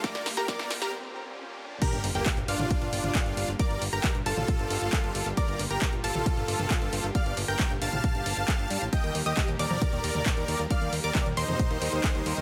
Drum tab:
CC |----------------|x---------------|----------------|----------------|
HH |xxoxxxox--------|xxoxxxoxxxoxxxox|xxoxxxoxxxoxxxox|xxoxxxoxxxoxxxox|
CP |----------------|----x-------x---|----x-------x---|----x-------x---|
SD |oooooooo--------|----------------|----------------|----------------|
T2 |---o------------|----o--oo--o----|----o--o--------|----o--oo--o----|
BD |o---o-----------|o---o---o---o---|o---o---o---o---|o---o---o---o---|

CC |----------------|----------------|----------------|
HH |xxoxxxo-xxoxxxox|xxoxxxoxxxoxxxox|xxo-xxoxxxoxxxox|
CP |----x-------x---|----x-------x---|----x-------x---|
SD |----------------|----------------|----------------|
T2 |----o--o--------|----o--oo--o----|----o--o--------|
BD |o---o---o---o---|o---o---o---o---|o---o---o---o---|